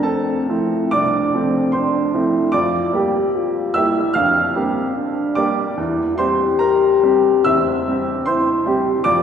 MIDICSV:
0, 0, Header, 1, 3, 480
1, 0, Start_track
1, 0, Tempo, 886263
1, 501, Tempo, 819672
1, 981, Tempo, 806452
1, 1450, Time_signature, 4, 2, 24, 8
1, 3381, Tempo, 839161
1, 4341, Tempo, 795756
1, 5411, End_track
2, 0, Start_track
2, 0, Title_t, "French horn"
2, 0, Program_c, 0, 60
2, 27, Note_on_c, 0, 60, 43
2, 272, Note_on_c, 0, 64, 48
2, 280, Note_off_c, 0, 60, 0
2, 512, Note_on_c, 0, 62, 39
2, 521, Note_off_c, 0, 64, 0
2, 749, Note_on_c, 0, 60, 45
2, 758, Note_off_c, 0, 62, 0
2, 986, Note_on_c, 0, 62, 44
2, 995, Note_off_c, 0, 60, 0
2, 1217, Note_on_c, 0, 64, 50
2, 1226, Note_off_c, 0, 62, 0
2, 1460, Note_on_c, 0, 65, 48
2, 1469, Note_off_c, 0, 64, 0
2, 1692, Note_off_c, 0, 65, 0
2, 1706, Note_on_c, 0, 67, 57
2, 1944, Note_on_c, 0, 65, 51
2, 1953, Note_off_c, 0, 67, 0
2, 2191, Note_on_c, 0, 64, 55
2, 2200, Note_off_c, 0, 65, 0
2, 2429, Note_on_c, 0, 62, 47
2, 2438, Note_off_c, 0, 64, 0
2, 2669, Note_on_c, 0, 60, 47
2, 2678, Note_off_c, 0, 62, 0
2, 2894, Note_off_c, 0, 60, 0
2, 2897, Note_on_c, 0, 62, 51
2, 3208, Note_off_c, 0, 62, 0
2, 3379, Note_on_c, 0, 64, 52
2, 3609, Note_on_c, 0, 67, 66
2, 3618, Note_off_c, 0, 64, 0
2, 4345, Note_on_c, 0, 60, 52
2, 4354, Note_off_c, 0, 67, 0
2, 4837, Note_on_c, 0, 64, 53
2, 4846, Note_off_c, 0, 60, 0
2, 5073, Note_on_c, 0, 67, 58
2, 5082, Note_off_c, 0, 64, 0
2, 5300, Note_off_c, 0, 67, 0
2, 5303, Note_on_c, 0, 65, 58
2, 5411, Note_off_c, 0, 65, 0
2, 5411, End_track
3, 0, Start_track
3, 0, Title_t, "Grand piano"
3, 0, Program_c, 1, 0
3, 0, Control_c, 1, 64, 127
3, 0, Note_on_c, 1, 41, 42
3, 0, Note_on_c, 1, 53, 29
3, 0, Note_on_c, 1, 57, 29
3, 0, Note_on_c, 1, 60, 32
3, 0, Note_on_c, 1, 70, 45
3, 0, Note_on_c, 1, 82, 56
3, 16, Note_on_c, 1, 81, 53
3, 22, Note_on_c, 1, 69, 44
3, 240, Note_off_c, 1, 53, 0
3, 243, Note_off_c, 1, 57, 0
3, 243, Note_off_c, 1, 60, 0
3, 266, Note_on_c, 1, 53, 28
3, 268, Note_on_c, 1, 57, 30
3, 269, Note_on_c, 1, 60, 34
3, 480, Note_off_c, 1, 69, 0
3, 483, Note_off_c, 1, 53, 0
3, 484, Note_off_c, 1, 57, 0
3, 484, Note_off_c, 1, 60, 0
3, 494, Note_on_c, 1, 86, 73
3, 499, Note_off_c, 1, 81, 0
3, 501, Note_on_c, 1, 36, 35
3, 502, Note_on_c, 1, 74, 50
3, 739, Note_off_c, 1, 36, 0
3, 747, Note_on_c, 1, 53, 29
3, 750, Note_on_c, 1, 57, 28
3, 750, Note_on_c, 1, 60, 35
3, 958, Note_off_c, 1, 74, 0
3, 967, Note_on_c, 1, 84, 52
3, 975, Note_on_c, 1, 72, 35
3, 977, Note_off_c, 1, 86, 0
3, 1192, Note_off_c, 1, 53, 0
3, 1193, Note_off_c, 1, 57, 0
3, 1193, Note_off_c, 1, 60, 0
3, 1220, Note_on_c, 1, 53, 32
3, 1221, Note_on_c, 1, 57, 30
3, 1224, Note_on_c, 1, 60, 35
3, 1423, Note_off_c, 1, 72, 0
3, 1429, Note_off_c, 1, 53, 0
3, 1429, Note_off_c, 1, 57, 0
3, 1431, Note_off_c, 1, 60, 0
3, 1442, Note_off_c, 1, 84, 0
3, 1442, Note_on_c, 1, 86, 72
3, 1451, Note_on_c, 1, 74, 54
3, 1453, Note_off_c, 1, 41, 0
3, 1453, Note_on_c, 1, 41, 42
3, 1459, Control_c, 1, 64, 0
3, 1463, Note_off_c, 1, 70, 0
3, 1464, Note_off_c, 1, 82, 0
3, 1545, Control_c, 1, 64, 127
3, 1682, Note_off_c, 1, 41, 0
3, 1688, Note_on_c, 1, 55, 32
3, 1690, Note_on_c, 1, 58, 30
3, 1695, Note_on_c, 1, 67, 35
3, 2150, Note_off_c, 1, 55, 0
3, 2150, Note_off_c, 1, 74, 0
3, 2151, Note_off_c, 1, 58, 0
3, 2153, Note_off_c, 1, 67, 0
3, 2168, Note_on_c, 1, 88, 66
3, 2169, Note_off_c, 1, 86, 0
3, 2175, Note_on_c, 1, 76, 49
3, 2180, Note_on_c, 1, 55, 31
3, 2180, Note_on_c, 1, 58, 31
3, 2184, Note_on_c, 1, 67, 34
3, 2397, Note_off_c, 1, 55, 0
3, 2397, Note_off_c, 1, 58, 0
3, 2399, Note_off_c, 1, 67, 0
3, 2401, Note_off_c, 1, 76, 0
3, 2404, Note_on_c, 1, 89, 70
3, 2411, Note_on_c, 1, 77, 55
3, 2415, Note_off_c, 1, 88, 0
3, 2416, Note_on_c, 1, 41, 36
3, 2650, Note_off_c, 1, 41, 0
3, 2652, Note_on_c, 1, 55, 29
3, 2656, Note_on_c, 1, 67, 33
3, 2657, Note_on_c, 1, 58, 32
3, 3110, Note_off_c, 1, 55, 0
3, 3110, Note_off_c, 1, 77, 0
3, 3113, Note_off_c, 1, 58, 0
3, 3113, Note_off_c, 1, 67, 0
3, 3129, Note_on_c, 1, 86, 63
3, 3130, Note_off_c, 1, 89, 0
3, 3135, Note_on_c, 1, 74, 45
3, 3136, Note_on_c, 1, 55, 33
3, 3138, Note_on_c, 1, 58, 34
3, 3142, Note_on_c, 1, 67, 35
3, 3356, Note_off_c, 1, 55, 0
3, 3357, Note_off_c, 1, 58, 0
3, 3359, Note_off_c, 1, 67, 0
3, 3363, Note_off_c, 1, 74, 0
3, 3376, Note_off_c, 1, 86, 0
3, 3378, Note_on_c, 1, 40, 42
3, 3390, Control_c, 1, 64, 0
3, 3503, Control_c, 1, 64, 127
3, 3608, Note_off_c, 1, 40, 0
3, 3609, Note_on_c, 1, 84, 65
3, 3615, Note_on_c, 1, 72, 52
3, 3618, Note_on_c, 1, 55, 34
3, 3620, Note_on_c, 1, 60, 30
3, 3622, Note_on_c, 1, 67, 32
3, 3833, Note_off_c, 1, 72, 0
3, 3845, Note_on_c, 1, 82, 64
3, 3847, Note_off_c, 1, 84, 0
3, 3849, Note_on_c, 1, 70, 46
3, 4071, Note_off_c, 1, 55, 0
3, 4073, Note_off_c, 1, 60, 0
3, 4074, Note_off_c, 1, 67, 0
3, 4098, Note_on_c, 1, 55, 34
3, 4099, Note_on_c, 1, 67, 36
3, 4101, Note_on_c, 1, 60, 32
3, 4318, Note_off_c, 1, 70, 0
3, 4321, Note_off_c, 1, 55, 0
3, 4321, Note_off_c, 1, 67, 0
3, 4322, Note_off_c, 1, 60, 0
3, 4335, Note_on_c, 1, 88, 74
3, 4339, Note_off_c, 1, 82, 0
3, 4342, Note_on_c, 1, 76, 50
3, 4345, Note_on_c, 1, 40, 39
3, 4584, Note_off_c, 1, 40, 0
3, 4595, Note_on_c, 1, 55, 29
3, 4601, Note_on_c, 1, 60, 33
3, 4602, Note_on_c, 1, 67, 31
3, 4805, Note_off_c, 1, 76, 0
3, 4824, Note_on_c, 1, 84, 67
3, 4825, Note_off_c, 1, 88, 0
3, 4832, Note_on_c, 1, 72, 46
3, 5044, Note_off_c, 1, 55, 0
3, 5047, Note_off_c, 1, 60, 0
3, 5047, Note_off_c, 1, 67, 0
3, 5068, Note_on_c, 1, 55, 31
3, 5073, Note_on_c, 1, 60, 32
3, 5075, Note_on_c, 1, 67, 39
3, 5280, Note_off_c, 1, 55, 0
3, 5280, Note_off_c, 1, 72, 0
3, 5283, Note_off_c, 1, 60, 0
3, 5284, Note_off_c, 1, 67, 0
3, 5297, Note_on_c, 1, 86, 75
3, 5300, Note_off_c, 1, 84, 0
3, 5305, Note_on_c, 1, 74, 54
3, 5307, Note_on_c, 1, 41, 47
3, 5313, Control_c, 1, 64, 0
3, 5411, Note_off_c, 1, 41, 0
3, 5411, Note_off_c, 1, 74, 0
3, 5411, Note_off_c, 1, 86, 0
3, 5411, End_track
0, 0, End_of_file